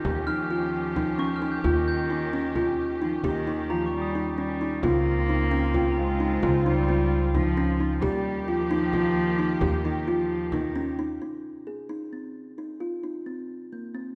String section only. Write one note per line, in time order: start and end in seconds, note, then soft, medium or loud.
0.00 4.79 D#3 medium
0.00 4.79 C#4 medium
0.00 4.79 G4 medium
4.83 7.99 C#3 medium
4.83 7.99 C4 medium
4.83 7.99 F4 medium
8.01 11.17 D#3 medium
8.01 11.17 A#3 medium
8.01 11.18 G4 medium